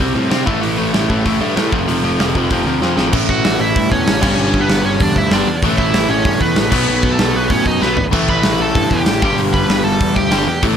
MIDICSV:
0, 0, Header, 1, 5, 480
1, 0, Start_track
1, 0, Tempo, 312500
1, 968, Time_signature, 4, 2, 24, 8
1, 16541, End_track
2, 0, Start_track
2, 0, Title_t, "Lead electric guitar"
2, 0, Program_c, 0, 29
2, 5062, Note_on_c, 0, 66, 74
2, 5071, Note_on_c, 0, 78, 91
2, 5504, Note_off_c, 0, 66, 0
2, 5534, Note_on_c, 0, 64, 76
2, 5541, Note_off_c, 0, 78, 0
2, 5547, Note_on_c, 0, 76, 99
2, 5979, Note_off_c, 0, 64, 0
2, 6005, Note_on_c, 0, 61, 69
2, 6015, Note_on_c, 0, 73, 80
2, 6034, Note_off_c, 0, 76, 0
2, 6455, Note_off_c, 0, 61, 0
2, 6461, Note_off_c, 0, 73, 0
2, 6479, Note_on_c, 0, 61, 81
2, 6484, Note_on_c, 0, 73, 74
2, 7043, Note_off_c, 0, 61, 0
2, 7073, Note_on_c, 0, 59, 71
2, 7075, Note_off_c, 0, 73, 0
2, 7081, Note_on_c, 0, 71, 91
2, 7416, Note_off_c, 0, 59, 0
2, 7453, Note_on_c, 0, 61, 72
2, 7455, Note_off_c, 0, 71, 0
2, 7462, Note_on_c, 0, 73, 83
2, 7676, Note_off_c, 0, 61, 0
2, 7711, Note_off_c, 0, 73, 0
2, 7711, Note_on_c, 0, 74, 96
2, 7718, Note_on_c, 0, 62, 80
2, 7928, Note_off_c, 0, 62, 0
2, 7940, Note_off_c, 0, 74, 0
2, 7954, Note_on_c, 0, 76, 88
2, 7965, Note_on_c, 0, 64, 61
2, 8169, Note_off_c, 0, 64, 0
2, 8184, Note_on_c, 0, 74, 91
2, 8190, Note_off_c, 0, 76, 0
2, 8192, Note_on_c, 0, 62, 72
2, 8512, Note_off_c, 0, 74, 0
2, 8516, Note_off_c, 0, 62, 0
2, 8883, Note_on_c, 0, 76, 88
2, 8893, Note_on_c, 0, 64, 68
2, 9335, Note_off_c, 0, 64, 0
2, 9365, Note_on_c, 0, 61, 78
2, 9378, Note_on_c, 0, 73, 106
2, 9380, Note_off_c, 0, 76, 0
2, 9813, Note_off_c, 0, 61, 0
2, 9820, Note_off_c, 0, 73, 0
2, 9852, Note_on_c, 0, 71, 111
2, 9857, Note_on_c, 0, 59, 67
2, 10286, Note_off_c, 0, 71, 0
2, 10296, Note_off_c, 0, 59, 0
2, 10304, Note_on_c, 0, 71, 97
2, 10319, Note_on_c, 0, 59, 69
2, 10880, Note_off_c, 0, 59, 0
2, 10931, Note_on_c, 0, 69, 99
2, 10934, Note_off_c, 0, 71, 0
2, 10943, Note_on_c, 0, 57, 77
2, 11270, Note_off_c, 0, 57, 0
2, 11299, Note_off_c, 0, 69, 0
2, 11308, Note_on_c, 0, 71, 105
2, 11317, Note_on_c, 0, 59, 71
2, 11524, Note_off_c, 0, 59, 0
2, 11524, Note_on_c, 0, 61, 75
2, 11530, Note_off_c, 0, 71, 0
2, 11530, Note_on_c, 0, 73, 99
2, 11750, Note_off_c, 0, 61, 0
2, 11766, Note_off_c, 0, 73, 0
2, 11771, Note_on_c, 0, 75, 106
2, 11796, Note_on_c, 0, 63, 79
2, 12005, Note_off_c, 0, 63, 0
2, 12016, Note_off_c, 0, 75, 0
2, 12023, Note_on_c, 0, 71, 105
2, 12032, Note_on_c, 0, 59, 70
2, 12351, Note_off_c, 0, 59, 0
2, 12351, Note_off_c, 0, 71, 0
2, 12743, Note_on_c, 0, 83, 110
2, 12752, Note_on_c, 0, 71, 80
2, 13186, Note_off_c, 0, 71, 0
2, 13228, Note_off_c, 0, 83, 0
2, 13234, Note_on_c, 0, 69, 94
2, 13240, Note_on_c, 0, 81, 104
2, 13669, Note_off_c, 0, 69, 0
2, 13676, Note_on_c, 0, 79, 112
2, 13699, Note_on_c, 0, 67, 83
2, 13714, Note_off_c, 0, 81, 0
2, 14139, Note_off_c, 0, 67, 0
2, 14175, Note_off_c, 0, 79, 0
2, 14204, Note_on_c, 0, 67, 73
2, 14208, Note_on_c, 0, 79, 84
2, 14408, Note_off_c, 0, 79, 0
2, 14411, Note_off_c, 0, 67, 0
2, 14644, Note_on_c, 0, 83, 105
2, 14665, Note_on_c, 0, 71, 87
2, 15102, Note_off_c, 0, 71, 0
2, 15109, Note_off_c, 0, 83, 0
2, 15115, Note_on_c, 0, 81, 114
2, 15124, Note_on_c, 0, 69, 87
2, 15571, Note_off_c, 0, 69, 0
2, 15610, Note_on_c, 0, 79, 103
2, 15614, Note_off_c, 0, 81, 0
2, 15634, Note_on_c, 0, 67, 86
2, 16067, Note_off_c, 0, 67, 0
2, 16081, Note_off_c, 0, 79, 0
2, 16102, Note_on_c, 0, 67, 70
2, 16104, Note_on_c, 0, 79, 74
2, 16316, Note_off_c, 0, 79, 0
2, 16318, Note_off_c, 0, 67, 0
2, 16541, End_track
3, 0, Start_track
3, 0, Title_t, "Overdriven electric guitar"
3, 0, Program_c, 1, 29
3, 5, Note_on_c, 1, 48, 92
3, 6, Note_on_c, 1, 55, 101
3, 12, Note_on_c, 1, 60, 109
3, 210, Note_off_c, 1, 60, 0
3, 215, Note_off_c, 1, 55, 0
3, 227, Note_off_c, 1, 48, 0
3, 228, Note_on_c, 1, 60, 78
3, 234, Note_on_c, 1, 55, 78
3, 245, Note_on_c, 1, 48, 76
3, 440, Note_off_c, 1, 48, 0
3, 448, Note_off_c, 1, 55, 0
3, 453, Note_off_c, 1, 60, 0
3, 458, Note_on_c, 1, 48, 87
3, 466, Note_on_c, 1, 55, 90
3, 472, Note_on_c, 1, 60, 87
3, 696, Note_off_c, 1, 48, 0
3, 702, Note_off_c, 1, 55, 0
3, 702, Note_on_c, 1, 45, 86
3, 705, Note_off_c, 1, 60, 0
3, 708, Note_on_c, 1, 52, 99
3, 715, Note_on_c, 1, 57, 91
3, 932, Note_off_c, 1, 52, 0
3, 934, Note_off_c, 1, 57, 0
3, 936, Note_off_c, 1, 45, 0
3, 940, Note_on_c, 1, 57, 95
3, 950, Note_on_c, 1, 52, 100
3, 954, Note_on_c, 1, 45, 77
3, 1168, Note_off_c, 1, 45, 0
3, 1174, Note_off_c, 1, 52, 0
3, 1187, Note_on_c, 1, 45, 92
3, 1193, Note_on_c, 1, 52, 93
3, 1194, Note_off_c, 1, 57, 0
3, 1201, Note_on_c, 1, 57, 93
3, 1415, Note_off_c, 1, 52, 0
3, 1420, Note_off_c, 1, 57, 0
3, 1424, Note_off_c, 1, 45, 0
3, 1427, Note_on_c, 1, 57, 89
3, 1433, Note_on_c, 1, 52, 89
3, 1442, Note_on_c, 1, 45, 73
3, 1655, Note_off_c, 1, 45, 0
3, 1671, Note_off_c, 1, 52, 0
3, 1673, Note_on_c, 1, 45, 77
3, 1681, Note_off_c, 1, 57, 0
3, 1687, Note_on_c, 1, 57, 89
3, 1689, Note_on_c, 1, 52, 88
3, 1918, Note_off_c, 1, 52, 0
3, 1920, Note_off_c, 1, 45, 0
3, 1920, Note_off_c, 1, 57, 0
3, 1926, Note_on_c, 1, 57, 102
3, 1936, Note_on_c, 1, 52, 98
3, 1939, Note_on_c, 1, 45, 85
3, 2142, Note_off_c, 1, 45, 0
3, 2146, Note_off_c, 1, 52, 0
3, 2161, Note_on_c, 1, 45, 81
3, 2164, Note_on_c, 1, 52, 78
3, 2165, Note_off_c, 1, 57, 0
3, 2171, Note_on_c, 1, 57, 87
3, 2382, Note_off_c, 1, 45, 0
3, 2382, Note_off_c, 1, 52, 0
3, 2392, Note_off_c, 1, 57, 0
3, 2398, Note_on_c, 1, 57, 89
3, 2401, Note_on_c, 1, 45, 74
3, 2401, Note_on_c, 1, 52, 89
3, 2631, Note_off_c, 1, 45, 0
3, 2631, Note_off_c, 1, 52, 0
3, 2646, Note_on_c, 1, 41, 100
3, 2655, Note_on_c, 1, 48, 98
3, 2655, Note_on_c, 1, 53, 98
3, 2866, Note_off_c, 1, 53, 0
3, 2873, Note_off_c, 1, 48, 0
3, 2885, Note_off_c, 1, 41, 0
3, 2885, Note_on_c, 1, 53, 103
3, 2892, Note_on_c, 1, 48, 96
3, 2903, Note_on_c, 1, 41, 78
3, 3109, Note_off_c, 1, 41, 0
3, 3119, Note_off_c, 1, 48, 0
3, 3124, Note_off_c, 1, 53, 0
3, 3127, Note_on_c, 1, 41, 89
3, 3137, Note_on_c, 1, 48, 90
3, 3143, Note_on_c, 1, 53, 97
3, 3353, Note_off_c, 1, 53, 0
3, 3365, Note_off_c, 1, 48, 0
3, 3370, Note_off_c, 1, 41, 0
3, 3371, Note_on_c, 1, 53, 101
3, 3383, Note_on_c, 1, 48, 86
3, 3389, Note_on_c, 1, 41, 83
3, 3592, Note_off_c, 1, 41, 0
3, 3603, Note_off_c, 1, 48, 0
3, 3605, Note_off_c, 1, 53, 0
3, 3610, Note_on_c, 1, 41, 89
3, 3621, Note_on_c, 1, 48, 88
3, 3623, Note_on_c, 1, 53, 101
3, 3843, Note_off_c, 1, 53, 0
3, 3848, Note_off_c, 1, 48, 0
3, 3858, Note_off_c, 1, 41, 0
3, 3861, Note_on_c, 1, 53, 95
3, 3867, Note_on_c, 1, 48, 100
3, 3876, Note_on_c, 1, 41, 97
3, 4068, Note_off_c, 1, 41, 0
3, 4074, Note_off_c, 1, 48, 0
3, 4087, Note_on_c, 1, 41, 78
3, 4088, Note_off_c, 1, 53, 0
3, 4092, Note_on_c, 1, 48, 92
3, 4106, Note_on_c, 1, 53, 90
3, 4314, Note_off_c, 1, 53, 0
3, 4321, Note_off_c, 1, 48, 0
3, 4325, Note_off_c, 1, 41, 0
3, 4332, Note_on_c, 1, 53, 87
3, 4339, Note_on_c, 1, 48, 86
3, 4343, Note_on_c, 1, 41, 72
3, 4547, Note_off_c, 1, 41, 0
3, 4554, Note_off_c, 1, 48, 0
3, 4554, Note_off_c, 1, 53, 0
3, 4565, Note_on_c, 1, 41, 77
3, 4573, Note_on_c, 1, 48, 83
3, 4573, Note_on_c, 1, 53, 89
3, 4795, Note_off_c, 1, 41, 0
3, 4798, Note_off_c, 1, 48, 0
3, 4798, Note_off_c, 1, 53, 0
3, 4807, Note_on_c, 1, 45, 95
3, 4834, Note_on_c, 1, 52, 106
3, 4836, Note_off_c, 1, 57, 0
3, 4842, Note_on_c, 1, 57, 106
3, 6468, Note_on_c, 1, 43, 99
3, 6474, Note_off_c, 1, 45, 0
3, 6487, Note_on_c, 1, 50, 97
3, 6488, Note_off_c, 1, 52, 0
3, 6492, Note_off_c, 1, 57, 0
3, 6508, Note_on_c, 1, 55, 104
3, 8144, Note_off_c, 1, 43, 0
3, 8153, Note_off_c, 1, 50, 0
3, 8164, Note_off_c, 1, 55, 0
3, 8177, Note_on_c, 1, 43, 82
3, 8189, Note_on_c, 1, 50, 88
3, 8210, Note_on_c, 1, 55, 94
3, 8399, Note_off_c, 1, 43, 0
3, 8405, Note_off_c, 1, 50, 0
3, 8415, Note_off_c, 1, 55, 0
3, 8658, Note_on_c, 1, 45, 99
3, 8675, Note_on_c, 1, 52, 102
3, 8685, Note_on_c, 1, 57, 105
3, 10312, Note_off_c, 1, 45, 0
3, 10318, Note_on_c, 1, 47, 102
3, 10326, Note_off_c, 1, 52, 0
3, 10331, Note_off_c, 1, 57, 0
3, 10332, Note_on_c, 1, 54, 100
3, 10351, Note_on_c, 1, 59, 109
3, 11973, Note_off_c, 1, 47, 0
3, 11981, Note_off_c, 1, 54, 0
3, 11991, Note_on_c, 1, 47, 79
3, 11997, Note_off_c, 1, 59, 0
3, 12000, Note_on_c, 1, 54, 87
3, 12015, Note_on_c, 1, 59, 90
3, 12224, Note_off_c, 1, 47, 0
3, 12228, Note_off_c, 1, 54, 0
3, 12236, Note_off_c, 1, 59, 0
3, 12468, Note_on_c, 1, 45, 83
3, 12489, Note_on_c, 1, 52, 92
3, 12494, Note_on_c, 1, 57, 107
3, 14142, Note_off_c, 1, 45, 0
3, 14152, Note_off_c, 1, 52, 0
3, 14155, Note_off_c, 1, 57, 0
3, 14158, Note_on_c, 1, 43, 93
3, 14175, Note_on_c, 1, 50, 94
3, 14185, Note_on_c, 1, 55, 110
3, 15822, Note_off_c, 1, 43, 0
3, 15835, Note_off_c, 1, 50, 0
3, 15840, Note_off_c, 1, 55, 0
3, 15841, Note_on_c, 1, 43, 80
3, 15863, Note_on_c, 1, 50, 98
3, 15869, Note_on_c, 1, 55, 86
3, 16068, Note_off_c, 1, 43, 0
3, 16079, Note_off_c, 1, 50, 0
3, 16082, Note_off_c, 1, 55, 0
3, 16327, Note_on_c, 1, 45, 97
3, 16337, Note_on_c, 1, 52, 95
3, 16355, Note_on_c, 1, 57, 104
3, 16541, Note_off_c, 1, 45, 0
3, 16541, Note_off_c, 1, 52, 0
3, 16541, Note_off_c, 1, 57, 0
3, 16541, End_track
4, 0, Start_track
4, 0, Title_t, "Picked electric bass"
4, 0, Program_c, 2, 34
4, 0, Note_on_c, 2, 36, 80
4, 217, Note_off_c, 2, 36, 0
4, 236, Note_on_c, 2, 45, 91
4, 458, Note_off_c, 2, 45, 0
4, 475, Note_on_c, 2, 48, 85
4, 698, Note_off_c, 2, 48, 0
4, 728, Note_on_c, 2, 33, 90
4, 945, Note_off_c, 2, 33, 0
4, 955, Note_on_c, 2, 33, 87
4, 1178, Note_off_c, 2, 33, 0
4, 1205, Note_on_c, 2, 33, 88
4, 1424, Note_off_c, 2, 33, 0
4, 1436, Note_on_c, 2, 33, 94
4, 1659, Note_off_c, 2, 33, 0
4, 1685, Note_on_c, 2, 33, 85
4, 1904, Note_off_c, 2, 33, 0
4, 1932, Note_on_c, 2, 33, 85
4, 2148, Note_off_c, 2, 33, 0
4, 2163, Note_on_c, 2, 43, 96
4, 2384, Note_off_c, 2, 43, 0
4, 2406, Note_on_c, 2, 45, 94
4, 2625, Note_off_c, 2, 45, 0
4, 2649, Note_on_c, 2, 29, 88
4, 2867, Note_off_c, 2, 29, 0
4, 2881, Note_on_c, 2, 29, 85
4, 3103, Note_off_c, 2, 29, 0
4, 3118, Note_on_c, 2, 29, 80
4, 3341, Note_off_c, 2, 29, 0
4, 3361, Note_on_c, 2, 29, 84
4, 3583, Note_off_c, 2, 29, 0
4, 3612, Note_on_c, 2, 29, 88
4, 3829, Note_off_c, 2, 29, 0
4, 3853, Note_on_c, 2, 29, 85
4, 4063, Note_off_c, 2, 29, 0
4, 4072, Note_on_c, 2, 38, 85
4, 4298, Note_off_c, 2, 38, 0
4, 4342, Note_on_c, 2, 41, 90
4, 4555, Note_off_c, 2, 41, 0
4, 4570, Note_on_c, 2, 33, 98
4, 4788, Note_off_c, 2, 33, 0
4, 4807, Note_on_c, 2, 33, 90
4, 5219, Note_off_c, 2, 33, 0
4, 5290, Note_on_c, 2, 33, 86
4, 5496, Note_off_c, 2, 33, 0
4, 5526, Note_on_c, 2, 33, 95
4, 5733, Note_off_c, 2, 33, 0
4, 5778, Note_on_c, 2, 43, 101
4, 5980, Note_off_c, 2, 43, 0
4, 6008, Note_on_c, 2, 40, 89
4, 6215, Note_off_c, 2, 40, 0
4, 6241, Note_on_c, 2, 33, 88
4, 6450, Note_off_c, 2, 33, 0
4, 6494, Note_on_c, 2, 31, 106
4, 6698, Note_off_c, 2, 31, 0
4, 6727, Note_on_c, 2, 31, 99
4, 7138, Note_off_c, 2, 31, 0
4, 7198, Note_on_c, 2, 31, 94
4, 7408, Note_off_c, 2, 31, 0
4, 7435, Note_on_c, 2, 31, 93
4, 7646, Note_off_c, 2, 31, 0
4, 7686, Note_on_c, 2, 40, 92
4, 7892, Note_off_c, 2, 40, 0
4, 7924, Note_on_c, 2, 38, 94
4, 8131, Note_off_c, 2, 38, 0
4, 8160, Note_on_c, 2, 31, 94
4, 8368, Note_off_c, 2, 31, 0
4, 8403, Note_on_c, 2, 40, 102
4, 8610, Note_off_c, 2, 40, 0
4, 8647, Note_on_c, 2, 33, 96
4, 9057, Note_off_c, 2, 33, 0
4, 9118, Note_on_c, 2, 33, 98
4, 9327, Note_off_c, 2, 33, 0
4, 9359, Note_on_c, 2, 33, 92
4, 9567, Note_off_c, 2, 33, 0
4, 9602, Note_on_c, 2, 43, 100
4, 9809, Note_off_c, 2, 43, 0
4, 9842, Note_on_c, 2, 40, 92
4, 10049, Note_off_c, 2, 40, 0
4, 10081, Note_on_c, 2, 33, 90
4, 10288, Note_off_c, 2, 33, 0
4, 10317, Note_on_c, 2, 35, 96
4, 10526, Note_off_c, 2, 35, 0
4, 10576, Note_on_c, 2, 35, 102
4, 10982, Note_off_c, 2, 35, 0
4, 11042, Note_on_c, 2, 35, 89
4, 11249, Note_off_c, 2, 35, 0
4, 11284, Note_on_c, 2, 35, 93
4, 11490, Note_off_c, 2, 35, 0
4, 11529, Note_on_c, 2, 45, 96
4, 11733, Note_off_c, 2, 45, 0
4, 11761, Note_on_c, 2, 42, 96
4, 11968, Note_off_c, 2, 42, 0
4, 12003, Note_on_c, 2, 35, 93
4, 12209, Note_off_c, 2, 35, 0
4, 12228, Note_on_c, 2, 32, 107
4, 12441, Note_off_c, 2, 32, 0
4, 12490, Note_on_c, 2, 33, 97
4, 12897, Note_off_c, 2, 33, 0
4, 12976, Note_on_c, 2, 33, 95
4, 13176, Note_off_c, 2, 33, 0
4, 13194, Note_on_c, 2, 33, 101
4, 13404, Note_off_c, 2, 33, 0
4, 13447, Note_on_c, 2, 43, 97
4, 13651, Note_off_c, 2, 43, 0
4, 13686, Note_on_c, 2, 40, 92
4, 13890, Note_off_c, 2, 40, 0
4, 13921, Note_on_c, 2, 33, 91
4, 14128, Note_off_c, 2, 33, 0
4, 14172, Note_on_c, 2, 31, 101
4, 14374, Note_off_c, 2, 31, 0
4, 14400, Note_on_c, 2, 31, 106
4, 14812, Note_off_c, 2, 31, 0
4, 14882, Note_on_c, 2, 31, 101
4, 15088, Note_off_c, 2, 31, 0
4, 15119, Note_on_c, 2, 31, 89
4, 15326, Note_off_c, 2, 31, 0
4, 15371, Note_on_c, 2, 40, 93
4, 15573, Note_off_c, 2, 40, 0
4, 15615, Note_on_c, 2, 38, 96
4, 15815, Note_off_c, 2, 38, 0
4, 15825, Note_on_c, 2, 31, 96
4, 16038, Note_off_c, 2, 31, 0
4, 16069, Note_on_c, 2, 40, 106
4, 16281, Note_off_c, 2, 40, 0
4, 16328, Note_on_c, 2, 33, 110
4, 16541, Note_off_c, 2, 33, 0
4, 16541, End_track
5, 0, Start_track
5, 0, Title_t, "Drums"
5, 0, Note_on_c, 9, 36, 91
5, 154, Note_off_c, 9, 36, 0
5, 479, Note_on_c, 9, 46, 50
5, 484, Note_on_c, 9, 38, 106
5, 633, Note_off_c, 9, 46, 0
5, 637, Note_off_c, 9, 38, 0
5, 725, Note_on_c, 9, 36, 106
5, 879, Note_off_c, 9, 36, 0
5, 971, Note_on_c, 9, 46, 57
5, 1125, Note_off_c, 9, 46, 0
5, 1445, Note_on_c, 9, 46, 52
5, 1449, Note_on_c, 9, 38, 111
5, 1598, Note_off_c, 9, 46, 0
5, 1603, Note_off_c, 9, 38, 0
5, 1687, Note_on_c, 9, 36, 84
5, 1841, Note_off_c, 9, 36, 0
5, 1930, Note_on_c, 9, 36, 94
5, 1930, Note_on_c, 9, 46, 59
5, 2084, Note_off_c, 9, 36, 0
5, 2084, Note_off_c, 9, 46, 0
5, 2412, Note_on_c, 9, 46, 55
5, 2417, Note_on_c, 9, 38, 110
5, 2566, Note_off_c, 9, 46, 0
5, 2570, Note_off_c, 9, 38, 0
5, 2650, Note_on_c, 9, 36, 104
5, 2804, Note_off_c, 9, 36, 0
5, 2896, Note_on_c, 9, 46, 62
5, 3049, Note_off_c, 9, 46, 0
5, 3376, Note_on_c, 9, 46, 54
5, 3381, Note_on_c, 9, 38, 112
5, 3530, Note_off_c, 9, 46, 0
5, 3534, Note_off_c, 9, 38, 0
5, 3613, Note_on_c, 9, 36, 85
5, 3767, Note_off_c, 9, 36, 0
5, 3845, Note_on_c, 9, 46, 54
5, 3852, Note_on_c, 9, 36, 100
5, 3999, Note_off_c, 9, 46, 0
5, 4006, Note_off_c, 9, 36, 0
5, 4332, Note_on_c, 9, 38, 60
5, 4486, Note_off_c, 9, 38, 0
5, 4570, Note_on_c, 9, 38, 81
5, 4723, Note_off_c, 9, 38, 0
5, 4804, Note_on_c, 9, 49, 127
5, 4811, Note_on_c, 9, 36, 127
5, 4958, Note_off_c, 9, 49, 0
5, 4965, Note_off_c, 9, 36, 0
5, 5053, Note_on_c, 9, 36, 90
5, 5207, Note_off_c, 9, 36, 0
5, 5293, Note_on_c, 9, 46, 72
5, 5298, Note_on_c, 9, 38, 114
5, 5447, Note_off_c, 9, 46, 0
5, 5451, Note_off_c, 9, 38, 0
5, 5775, Note_on_c, 9, 36, 120
5, 5781, Note_on_c, 9, 46, 76
5, 5929, Note_off_c, 9, 36, 0
5, 5934, Note_off_c, 9, 46, 0
5, 6015, Note_on_c, 9, 36, 86
5, 6168, Note_off_c, 9, 36, 0
5, 6257, Note_on_c, 9, 46, 69
5, 6261, Note_on_c, 9, 38, 118
5, 6410, Note_off_c, 9, 46, 0
5, 6415, Note_off_c, 9, 38, 0
5, 6494, Note_on_c, 9, 36, 119
5, 6495, Note_on_c, 9, 57, 109
5, 6648, Note_off_c, 9, 36, 0
5, 6649, Note_off_c, 9, 57, 0
5, 6972, Note_on_c, 9, 36, 91
5, 7125, Note_off_c, 9, 36, 0
5, 7208, Note_on_c, 9, 46, 62
5, 7213, Note_on_c, 9, 38, 110
5, 7362, Note_off_c, 9, 46, 0
5, 7367, Note_off_c, 9, 38, 0
5, 7680, Note_on_c, 9, 46, 69
5, 7688, Note_on_c, 9, 36, 124
5, 7833, Note_off_c, 9, 46, 0
5, 7842, Note_off_c, 9, 36, 0
5, 7925, Note_on_c, 9, 36, 84
5, 8079, Note_off_c, 9, 36, 0
5, 8159, Note_on_c, 9, 46, 63
5, 8164, Note_on_c, 9, 38, 115
5, 8313, Note_off_c, 9, 46, 0
5, 8317, Note_off_c, 9, 38, 0
5, 8635, Note_on_c, 9, 46, 65
5, 8641, Note_on_c, 9, 36, 125
5, 8789, Note_off_c, 9, 46, 0
5, 8795, Note_off_c, 9, 36, 0
5, 8883, Note_on_c, 9, 36, 94
5, 9036, Note_off_c, 9, 36, 0
5, 9123, Note_on_c, 9, 46, 69
5, 9127, Note_on_c, 9, 38, 113
5, 9276, Note_off_c, 9, 46, 0
5, 9281, Note_off_c, 9, 38, 0
5, 9597, Note_on_c, 9, 46, 77
5, 9602, Note_on_c, 9, 36, 121
5, 9751, Note_off_c, 9, 46, 0
5, 9755, Note_off_c, 9, 36, 0
5, 9841, Note_on_c, 9, 36, 90
5, 9995, Note_off_c, 9, 36, 0
5, 10077, Note_on_c, 9, 46, 74
5, 10082, Note_on_c, 9, 38, 122
5, 10231, Note_off_c, 9, 46, 0
5, 10235, Note_off_c, 9, 38, 0
5, 10320, Note_on_c, 9, 36, 112
5, 10320, Note_on_c, 9, 57, 107
5, 10474, Note_off_c, 9, 36, 0
5, 10474, Note_off_c, 9, 57, 0
5, 10800, Note_on_c, 9, 36, 99
5, 10953, Note_off_c, 9, 36, 0
5, 11041, Note_on_c, 9, 46, 70
5, 11045, Note_on_c, 9, 38, 126
5, 11194, Note_off_c, 9, 46, 0
5, 11199, Note_off_c, 9, 38, 0
5, 11521, Note_on_c, 9, 36, 118
5, 11521, Note_on_c, 9, 46, 67
5, 11675, Note_off_c, 9, 36, 0
5, 11675, Note_off_c, 9, 46, 0
5, 11761, Note_on_c, 9, 36, 84
5, 11915, Note_off_c, 9, 36, 0
5, 12011, Note_on_c, 9, 38, 71
5, 12164, Note_off_c, 9, 38, 0
5, 12239, Note_on_c, 9, 43, 94
5, 12393, Note_off_c, 9, 43, 0
5, 12485, Note_on_c, 9, 49, 113
5, 12487, Note_on_c, 9, 36, 127
5, 12638, Note_off_c, 9, 49, 0
5, 12640, Note_off_c, 9, 36, 0
5, 12725, Note_on_c, 9, 36, 86
5, 12879, Note_off_c, 9, 36, 0
5, 12952, Note_on_c, 9, 46, 69
5, 12956, Note_on_c, 9, 38, 116
5, 13105, Note_off_c, 9, 46, 0
5, 13110, Note_off_c, 9, 38, 0
5, 13441, Note_on_c, 9, 46, 72
5, 13446, Note_on_c, 9, 36, 123
5, 13595, Note_off_c, 9, 46, 0
5, 13599, Note_off_c, 9, 36, 0
5, 13683, Note_on_c, 9, 36, 86
5, 13837, Note_off_c, 9, 36, 0
5, 13917, Note_on_c, 9, 46, 68
5, 13921, Note_on_c, 9, 38, 118
5, 14070, Note_off_c, 9, 46, 0
5, 14075, Note_off_c, 9, 38, 0
5, 14167, Note_on_c, 9, 36, 118
5, 14320, Note_off_c, 9, 36, 0
5, 14404, Note_on_c, 9, 46, 72
5, 14558, Note_off_c, 9, 46, 0
5, 14650, Note_on_c, 9, 36, 85
5, 14804, Note_off_c, 9, 36, 0
5, 14893, Note_on_c, 9, 46, 72
5, 14897, Note_on_c, 9, 38, 117
5, 15046, Note_off_c, 9, 46, 0
5, 15051, Note_off_c, 9, 38, 0
5, 15371, Note_on_c, 9, 36, 117
5, 15374, Note_on_c, 9, 46, 69
5, 15525, Note_off_c, 9, 36, 0
5, 15527, Note_off_c, 9, 46, 0
5, 15609, Note_on_c, 9, 36, 95
5, 15763, Note_off_c, 9, 36, 0
5, 15843, Note_on_c, 9, 46, 66
5, 15848, Note_on_c, 9, 38, 122
5, 15997, Note_off_c, 9, 46, 0
5, 16002, Note_off_c, 9, 38, 0
5, 16321, Note_on_c, 9, 46, 67
5, 16326, Note_on_c, 9, 36, 124
5, 16474, Note_off_c, 9, 46, 0
5, 16480, Note_off_c, 9, 36, 0
5, 16541, End_track
0, 0, End_of_file